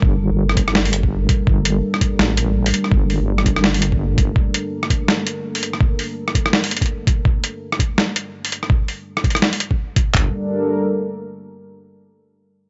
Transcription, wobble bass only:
0.02 G1
0.31 G1
1.47 G1
2.20 A1
2.91 G1
3.20 G1
4.18 G1
10.14 G1

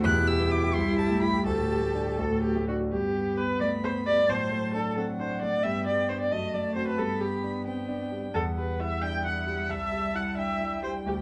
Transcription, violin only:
0.04 F#6
0.27 E6
0.51 D6
0.74 C6
0.98 A5
1.22 B5
1.46 A5
3.61 B5
4.30 A5
4.98 F#5
5.65 G5
6.32 A5
6.98 B5
7.66 G5
8.35 F#5
9.02 E5
9.69 A5
10.38 G5

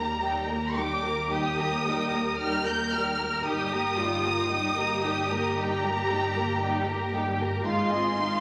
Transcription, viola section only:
Already playing: A#3 G4
0.23 G3 D#4
0.50 A#3 G4
0.78 G3 D#4
1.05 A#3 G4
1.33 G3 D#4
1.60 A#3 G4
1.88 G3 D#4
2.15 A#3 G4
2.41 G3 D#4
2.67 A#3 G4
2.94 G3 D#4
3.21 A#3 G4
3.46 G3 D#4
3.73 A#3 G4
3.98 G3 D#4
4.25 A#3 G4
4.51 G3 D#4
4.78 A#3 G4
5.04 G3 D#4
5.31 A#3 G4
5.59 G3 D#4
5.84 A#3 G4
6.11 G3 D#4
6.36 A#3 G4
6.62 G3 D#4
6.88 A#3 G4
7.14 G3 D#4
7.39 A#3 G4
7.65 G#3 D#4
7.93 C4 F4
8.18 G#3 D#4

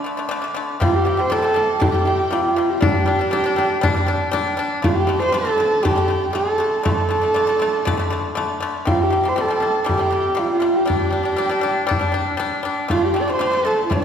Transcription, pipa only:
0.04 D3 A3
0.17 D3 A3
0.29 D3 A3
0.42 D3 A3
0.54 D3 A3
0.80 C3 G3
1.05 C3 G3
1.17 C3 G3
1.30 C3 G3
1.42 C3 G3
1.54 C3 G3
1.80 C3 G3
1.92 C3 G3
2.05 C3 G3
2.31 C3 G3
2.56 C3 G3
2.81 G3 D4
3.06 G3 D4
3.19 G3 D4
3.31 G3 D4
3.44 G3 D4
3.56 G3 D4
3.81 G3 D4
3.94 G3 D4
4.07 G3 D4
4.31 G3 D4
4.57 G3 D4
4.82 D3 A3
5.07 D3 A3
5.20 D3 A3
5.32 D3 A3
5.45 D3 A3
5.58 D3 A3
5.83 D3 A3
5.96 D3 A3
6.08 D3 A3
6.33 D3 A3
6.58 D3 A3
6.83 D3 A3
7.09 D3 A3
7.21 D3 A3
7.34 D3 A3
7.47 D3 A3
7.59 D3 A3
7.85 D3 A3
7.97 D3 A3
8.10 D3 A3
8.35 D3 A3
8.60 D3 A3
8.85 C3 G3
9.10 C3 G3
9.23 C3 G3
9.36 C3 G3
9.48 C3 G3
9.60 C3 G3
9.84 C3 G3
9.98 C3 G3
10.10 C3 G3
10.35 C3 G3
10.60 C3 G3
10.86 G3 D4
11.11 G3 D4
11.23 G3 D4
11.37 G3 D4
11.49 G3 D4
11.61 G3 D4
11.87 G3 D4
11.99 G3 D4
12.12 G3 D4
12.37 G3 D4
12.63 G3 D4
12.88 D3 A3
13.14 D3 A3
13.28 D3 A3
13.39 D3 A3
13.52 D3 A3
13.65 D3 A3
13.90 D3 A3

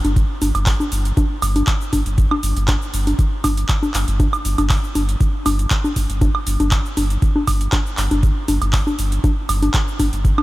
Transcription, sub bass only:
0.04 G1
0.42 G1
0.55 G1
0.92 G1
1.42 G1
1.93 G1
2.06 G1
2.43 G1
2.57 G1
2.94 G1
3.44 G1
3.94 G1
4.08 G1
4.45 G1
4.58 G1
4.95 G1
5.46 G1
5.96 G1
6.10 G1
6.47 G1
6.60 G1
6.97 G1
7.47 G1
7.98 G1
8.11 G1
8.48 G1
8.62 G1
8.99 G1
9.49 G1
9.99 G1
10.13 G1

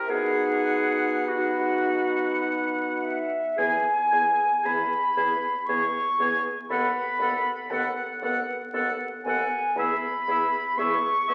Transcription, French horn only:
0.11 D#4
1.30 D#4
3.60 B3
4.13 B3
4.66 B3
5.19 B3
5.70 B3
6.20 B3
6.72 B3
7.22 B3
7.73 B3
8.24 B3
8.75 B3
9.26 B3
9.78 B3
10.28 B3
10.77 B3
11.29 B3

